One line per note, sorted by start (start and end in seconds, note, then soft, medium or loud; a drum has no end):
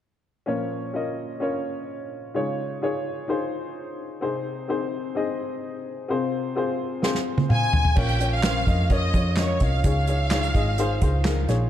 0.46 2.31 A#2 soft
0.46 2.31 F3 soft
0.46 0.84 C#4 medium
0.46 0.84 F4 medium
0.46 0.85 A#4 medium
0.46 0.85 C#5 medium
0.94 1.31 C#4 soft
0.94 1.31 F4 soft
0.94 1.32 A#4 medium
0.94 1.32 D#5 medium
1.40 2.15 C#4 medium
1.40 2.15 F4 medium
1.40 2.16 A#4 medium
1.40 2.16 C#5 medium
2.34 4.19 C#3 soft
2.34 4.19 G#3 soft
2.34 2.72 D#4 medium
2.34 2.72 F4 medium
2.34 2.72 G#4 soft
2.34 2.73 C#5 medium
2.82 3.19 D#4 medium
2.82 3.19 F4 medium
2.82 3.19 G#4 medium
2.82 3.20 C#5 medium
3.28 4.03 D#4 medium
3.28 4.03 F4 medium
3.28 4.03 G#4 medium
3.28 4.04 C5 medium
4.21 6.06 C3 soft
4.21 4.59 C4 medium
4.21 4.59 D#4 medium
4.21 4.59 G#4 medium
4.21 4.60 C5 medium
4.68 5.06 C4 medium
4.68 5.06 D#4 medium
4.68 5.07 G#4 medium
4.68 5.07 C5 medium
5.15 5.90 C4 medium
5.15 5.90 D#4 medium
5.15 5.91 G#4 medium
5.15 5.91 D#5 medium
6.08 7.93 C3 medium
6.08 6.46 C4 medium
6.08 6.47 F4 medium
6.08 6.47 G#4 soft
6.08 6.47 C5 medium
6.56 6.93 C4 medium
6.56 6.94 F4 medium
6.56 6.94 G#4 medium
6.56 6.94 C5 medium
7.02 7.77 C4 medium
7.02 7.78 F4 medium
7.02 7.78 G#4 medium
7.02 7.78 C5 medium
7.02 snare soft
7.15 snare soft
7.38 high tom medium
7.49 7.72 F5 medium
7.49 7.94 G#5 medium
7.49 mid tom medium
7.73 7.95 G#5 soft
7.73 floor tom medium
7.85 floor tom medium
7.96 8.64 A#1 medium
7.96 8.63 A#2 medium
7.96 8.64 F3 soft
7.96 8.15 C#4 medium
7.96 8.16 F4 medium
7.96 8.16 A#4 medium
7.96 8.16 C#5 medium
7.96 8.33 G5 medium
7.96 kick medium
7.96 crash medium
8.08 closed hi-hat soft
8.19 8.39 C#4 soft
8.19 8.39 F4 soft
8.19 8.39 A#4 soft
8.19 8.40 C#5 medium
8.19 closed hi-hat medium
8.33 8.87 F5 medium
8.43 8.62 C#4 medium
8.43 8.63 F4 medium
8.43 8.63 A#4 medium
8.43 8.63 C5 medium
8.43 snare loud
8.43 clap medium
8.43 closed hi-hat medium
8.66 9.11 F2 medium
8.66 8.86 C#4 medium
8.66 8.86 F4 medium
8.66 8.86 A#4 medium
8.66 8.87 D#5 medium
8.66 kick medium
8.66 closed hi-hat soft
8.90 9.09 C#4 medium
8.90 9.10 F4 medium
8.90 9.10 A#4 medium
8.90 9.10 C#5 medium
8.90 9.39 D#5 medium
8.90 kick medium
8.90 closed hi-hat medium
9.14 9.58 F2 medium
9.14 9.33 C#4 medium
9.14 9.33 F4 medium
9.14 9.34 A#4 medium
9.14 9.34 C#5 medium
9.14 kick medium
9.14 closed hi-hat medium
9.36 9.56 C#4 medium
9.36 9.57 F4 medium
9.36 9.57 A#4 medium
9.36 9.61 C#5 medium
9.36 9.57 D#5 medium
9.36 snare medium
9.36 clap medium
9.36 closed hi-hat medium
9.60 9.83 C2 medium
9.60 9.79 C#4 medium
9.60 9.80 F4 soft
9.60 9.80 A#4 medium
9.60 9.80 D#5 medium
9.60 9.86 F5 medium
9.60 kick medium
9.60 closed hi-hat medium
9.84 10.52 C#2 medium
9.84 10.51 C#3 soft
9.84 10.51 G#3 soft
9.84 10.03 D#4 medium
9.84 10.03 F4 medium
9.84 10.04 G#4 medium
9.84 10.04 C#5 medium
9.84 11.46 F5 medium
9.84 kick medium
9.84 closed hi-hat medium
10.07 10.26 D#4 medium
10.07 10.27 F4 soft
10.07 10.27 G#4 soft
10.07 10.27 C#5 medium
10.07 closed hi-hat medium
10.30 10.50 D#4 medium
10.30 10.50 F4 medium
10.30 10.50 G#4 medium
10.30 10.51 C#5 medium
10.30 snare loud
10.30 clap medium
10.30 closed hi-hat medium
10.43 closed hi-hat soft
10.54 10.99 G#1 medium
10.54 10.73 D#4 medium
10.54 10.74 F4 medium
10.54 10.74 G#4 medium
10.54 10.74 D#5 medium
10.54 kick medium
10.54 closed hi-hat medium
10.78 10.97 D#4 medium
10.78 10.97 F4 medium
10.78 10.97 G#4 medium
10.78 10.98 C5 loud
10.78 closed hi-hat medium
11.01 11.46 C#2 medium
11.01 11.20 D#4 medium
11.01 11.20 F4 medium
11.01 11.21 G#4 medium
11.01 11.21 C5 medium
11.01 kick medium
11.01 closed hi-hat medium
11.24 11.44 D#4 medium
11.24 11.44 F4 medium
11.24 11.44 G#4 medium
11.24 11.44 A#4 medium
11.24 snare medium
11.24 clap medium
11.24 closed hi-hat medium
11.47 11.70 A#1 medium
11.47 11.67 D#4 medium
11.47 11.67 F4 medium
11.47 11.67 G#4 medium
11.47 11.68 C#5 medium
11.47 snare soft
11.47 closed hi-hat soft